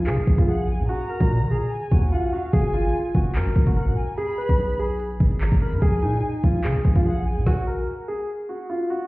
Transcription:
0.07 808-style bass C#3, upright piano G#4, clap
0.18 808-style bass A#1
0.27 808-style bass A#1, kick
0.38 808-style bass A#1, upright piano F4, kick
0.48 upright piano G#4, violin section F#5
0.68 violin section G#5
0.79 808-style bass A#2
0.89 upright piano F#4, violin section A#5
1.09 upright piano A#4
1.20 808-style bass A#2, kick
1.41 808-style bass D#3
1.50 808-style bass A#2, upright piano G#4
1.71 violin section G#5
1.92 808-style bass D#2, upright piano F#4, kick
2.12 upright piano F4, violin section F#5
2.33 upright piano F#4, violin section F5
2.53 808-style bass F#1, upright piano G#4, violin section G#5, kick, closed hi-hat
2.74 808-style bass G#1, upright piano F4, closed hi-hat
2.85 closed hi-hat
3.15 808-style bass F#1, upright piano F#4, kick, closed hi-hat
3.35 808-style bass F#2, upright piano A#4, clap, closed hi-hat
3.46 808-style bass F#1
3.56 808-style bass A#1, kick
3.67 808-style bass F#1, upright piano F#4, kick, closed hi-hat
3.77 upright piano A#4, violin section F#5, closed hi-hat
3.88 808-style bass A#2
3.97 violin section G#5
4.18 upright piano G#4, violin section B5, closed hi-hat
4.38 upright piano B4
4.49 808-style bass B1, kick
4.59 closed hi-hat
4.79 upright piano G#4, closed hi-hat
5.00 closed hi-hat
5.20 808-style bass G#1, kick
5.31 closed hi-hat
5.41 violin section A#5, clap, closed hi-hat
5.52 808-style bass G#1, kick, closed hi-hat
5.61 upright piano A#4, violin section B5
5.72 808-style bass G#2
5.82 808-style bass A#1, upright piano G#4, violin section G#5, kick, closed hi-hat
6.03 808-style bass A#2, upright piano D#4, closed hi-hat
6.14 closed hi-hat
6.44 808-style bass A#1, upright piano F4, kick, closed hi-hat
6.64 808-style bass C#3, upright piano G#4, clap, closed hi-hat
6.75 808-style bass A#1
6.85 808-style bass A#1, kick
6.96 808-style bass A#1, upright piano F4, kick, closed hi-hat
7.05 upright piano G#4, violin section F#5, closed hi-hat
7.26 violin section G#5
7.37 808-style bass A#2
7.46 upright piano F#4, kick, snare
7.67 upright piano A#4
8.08 upright piano G#4
8.49 upright piano F#4
8.70 upright piano F4
8.90 upright piano F#4

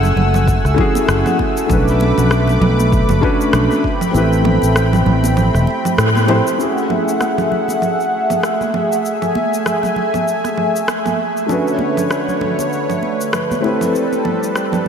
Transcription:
Already playing: fingered electric bass F#1, grand piano A3 C#4 E4 F#4 G#4, analog synth pad A3 F#5 G#5 E6
0.03 low conga, shaker
0.16 fingered electric bass F#1, low conga
0.34 muted conga, high conga, low conga, shaker
0.48 kick, shaker
0.65 fingered electric bass C#2, cross-stick, shaker
0.74 grand piano A3 C#4 E4, kick, low conga
0.79 grand piano F#4 G#4
0.95 muted conga, shaker
1.08 fingered electric bass F#1, cross-stick, shaker
1.26 high conga, low conga, shaker
1.39 kick, muted conga
1.57 shaker
1.67 fingered electric bass B1, grand piano A3 C#4 D4, analog synth pad B4 B5 D6, kick, low conga, shaker
1.71 grand piano F#4 B4
1.88 shaker
2.00 muted conga, high conga
2.18 fingered electric bass B1, low conga, shaker
2.31 cross-stick, shaker
2.48 muted conga, low conga, shaker
2.61 fingered electric bass B1, low conga
2.79 high conga, shaker
2.92 kick, shaker
3.09 fingered electric bass F#1, muted conga, low conga, shaker
3.21 grand piano A3 C#4 D4 F#4 B4, kick
3.41 shaker
3.53 fingered electric bass B1, cross-stick, muted conga, low conga, shaker
3.71 high conga, shaker
3.84 analog synth pad C4 G5, kick
4.01 low conga, shaker
4.11 fingered electric bass A1, grand piano A3 C4 E4, muted conga, shaker
4.16 grand piano G4 B4
4.33 shaker
4.45 high conga, low conga
4.62 fingered electric bass A1, muted conga, shaker
4.76 cross-stick, shaker
4.93 low conga, shaker
5.06 fingered electric bass A1, low conga
5.24 muted conga, high conga, shaker
5.37 low conga, shaker
5.55 fingered electric bass E1, cross-stick, shaker
5.67 muted conga
5.85 low conga, shaker
5.98 fingered electric bass A2, cross-stick, shaker
6.15 high conga, shaker
6.27 grand piano A3 C4 E4 G4 C5, muted conga, low conga
6.47 shaker
6.57 grand piano A3 C#4 E4, analog synth pad A3 G#4 E5 F#5, muted conga, shaker
6.61 grand piano F#4 G#4
6.78 shaker
6.90 high conga, low conga
7.08 shaker
7.21 cross-stick, muted conga, shaker
7.38 low conga, shaker
7.52 low conga
7.68 muted conga, high conga, shaker
7.82 low conga, shaker
8.00 shaker
8.30 muted conga, low conga, shaker
8.43 cross-stick, shaker
8.61 high conga, shaker
8.74 muted conga, low conga
8.92 shaker
9.04 analog synth pad G#5, shaker
9.22 low conga, shaker
9.35 muted conga, high conga
9.54 shaker
9.66 cross-stick, low conga, shaker
9.83 muted conga, low conga, shaker
9.96 low conga
10.14 high conga, low conga, shaker
10.28 shaker
10.44 cross-stick, muted conga, shaker
10.58 low conga
10.76 shaker
10.88 cross-stick, muted conga, shaker
11.06 high conga, low conga, shaker
11.37 shaker
11.46 analog synth pad D3 B4 C#5, grand piano A3 C#4 D4, muted conga, low conga, shaker
11.51 grand piano F#4 B4
11.68 shaker
11.79 high conga
11.97 muted conga, low conga, shaker
12.11 cross-stick, shaker
12.28 low conga, shaker
12.41 low conga
12.59 muted conga, high conga, shaker
12.73 shaker
12.90 low conga, shaker
13.03 muted conga
13.21 shaker
13.33 cross-stick, low conga, shaker
13.51 high conga, shaker
13.61 analog synth pad G3 C4 A4, grand piano A3 C4 E4, muted conga
13.65 grand piano G4 B4
13.81 low conga, shaker
13.95 shaker
14.13 muted conga, shaker
14.25 high conga, low conga
14.43 shaker
14.56 cross-stick, shaker
14.72 muted conga, low conga, shaker

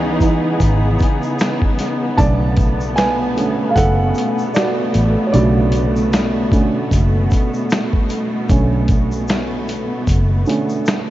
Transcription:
Already playing: fingered electric bass C#2, string section C#3 E3 B3 D#4 G#4, upright piano E3 B3 D#4
0.20 upright piano E3 B3 D#4, kick, closed hi-hat, shaker
0.60 fingered electric bass G#1, kick, closed hi-hat, shaker
0.99 kick, closed hi-hat, shaker
1.23 shaker
1.39 finger snap, snare, closed hi-hat, shaker
1.62 kick
1.79 snare, closed hi-hat, shaker
2.17 fingered electric bass B1, string section B2 A3, upright piano C#3 D3 A3 D5 A5, kick, closed hi-hat, shaker
2.57 kick, closed hi-hat, shaker
2.81 shaker
2.96 upright piano B4 G#5, finger snap, snare, closed hi-hat, shaker
3.36 upright piano D3 A3 C#4, closed hi-hat, shaker
3.69 upright piano F5
3.76 fingered electric bass F#1, upright piano A4 F#5, kick, closed hi-hat, shaker
4.15 closed hi-hat, shaker
4.38 shaker
4.54 upright piano F#4 D5, finger snap, snare, closed hi-hat, shaker
4.94 fingered electric bass A1, closed hi-hat, shaker
5.27 upright piano C#5
5.32 fingered electric bass B1, upright piano C#3 D3 A3 F#4 D5, closed hi-hat, shaker
5.72 closed hi-hat, shaker
5.96 shaker
6.13 finger snap, snare, closed hi-hat, shaker
6.52 upright piano D3 A3 C#4, kick, closed hi-hat, shaker
6.91 fingered electric bass F#1, kick, closed hi-hat, shaker
7.31 kick, closed hi-hat, shaker
7.54 shaker
7.70 finger snap, snare, closed hi-hat, shaker
7.93 kick
8.10 closed hi-hat, shaker
8.49 fingered electric bass B1, upright piano D3 A3 C#4, kick, closed hi-hat, shaker
8.88 kick, closed hi-hat, shaker
9.12 shaker
9.28 finger snap, snare, closed hi-hat, shaker
9.68 closed hi-hat, shaker
10.07 fingered electric bass F#1, kick, closed hi-hat, shaker
10.46 upright piano D3 A3 C#4, closed hi-hat, shaker
10.69 shaker
10.86 finger snap, snare, closed hi-hat, shaker

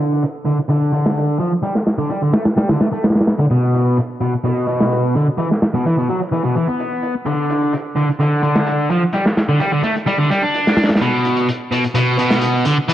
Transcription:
Already playing: distorted electric guitar D3
0.00 closed hi-hat
0.12 closed hi-hat
0.23 closed hi-hat
0.46 distorted electric guitar D3, closed hi-hat
0.58 closed hi-hat
0.69 distorted electric guitar D3, closed hi-hat
0.93 distorted electric guitar D3, closed hi-hat
1.06 snare
1.17 closed hi-hat
1.40 distorted electric guitar F3, closed hi-hat
1.63 distorted electric guitar G3, closed hi-hat
1.75 snare
1.87 snare, closed hi-hat
1.98 distorted electric guitar D3
2.10 distorted electric guitar G3, closed hi-hat
2.22 distorted electric guitar D3
2.33 distorted electric guitar A3, snare, closed hi-hat
2.45 snare, closed hi-hat
2.57 distorted electric guitar G3, snare, closed hi-hat
2.68 distorted electric guitar D3, snare, closed hi-hat
2.80 distorted electric guitar A3, snare, closed hi-hat
2.92 distorted electric guitar A3
3.03 snare, closed hi-hat
3.09 snare, closed hi-hat
3.15 snare, closed hi-hat
3.21 snare, closed hi-hat
3.27 snare, closed hi-hat
3.39 distorted electric guitar D3
3.51 distorted electric guitar B2, closed hi-hat
3.74 closed hi-hat
3.86 closed hi-hat
3.97 closed hi-hat
4.21 distorted electric guitar B2, closed hi-hat
4.33 closed hi-hat
4.44 distorted electric guitar B2, closed hi-hat
4.68 distorted electric guitar B2, closed hi-hat
4.80 snare
4.92 closed hi-hat
5.15 distorted electric guitar D3, closed hi-hat
5.38 distorted electric guitar E3, closed hi-hat
5.51 snare
5.62 snare, closed hi-hat
5.74 distorted electric guitar B2
5.85 distorted electric guitar E3, closed hi-hat
5.98 distorted electric guitar B2
6.09 distorted electric guitar F#3, closed hi-hat
6.21 closed hi-hat
6.32 distorted electric guitar E3, closed hi-hat
6.44 distorted electric guitar B2
6.56 distorted electric guitar E3, closed hi-hat
6.68 distorted electric guitar B3
6.80 closed hi-hat
7.02 closed hi-hat
7.26 distorted electric guitar D3, closed hi-hat
7.50 closed hi-hat
7.61 closed hi-hat
7.73 closed hi-hat
7.96 distorted electric guitar D3, closed hi-hat
8.09 closed hi-hat
8.20 distorted electric guitar D3, closed hi-hat
8.43 distorted electric guitar D3, closed hi-hat
8.55 snare
8.67 closed hi-hat
8.90 distorted electric guitar F3, closed hi-hat
9.13 distorted electric guitar G3, closed hi-hat
9.26 snare
9.37 snare, closed hi-hat
9.49 distorted electric guitar D3
9.60 distorted electric guitar G3, closed hi-hat
9.72 distorted electric guitar D3
9.83 distorted electric guitar A3, closed hi-hat
9.95 closed hi-hat
10.07 distorted electric guitar G3, closed hi-hat
10.19 distorted electric guitar D3
10.31 distorted electric guitar G3, closed hi-hat
10.43 distorted electric guitar D4
10.54 closed hi-hat
10.67 snare
10.77 snare, closed hi-hat
10.83 snare, closed hi-hat
10.89 snare, closed hi-hat
10.95 snare, closed hi-hat
11.01 distorted electric guitar B2, closed hi-hat
11.25 closed hi-hat
11.37 closed hi-hat
11.49 closed hi-hat
11.72 distorted electric guitar B2, closed hi-hat
11.84 closed hi-hat
11.95 distorted electric guitar B2, closed hi-hat
12.18 distorted electric guitar B2, closed hi-hat
12.30 snare
12.41 closed hi-hat
12.65 distorted electric guitar D3, closed hi-hat
12.89 distorted electric guitar E3, closed hi-hat

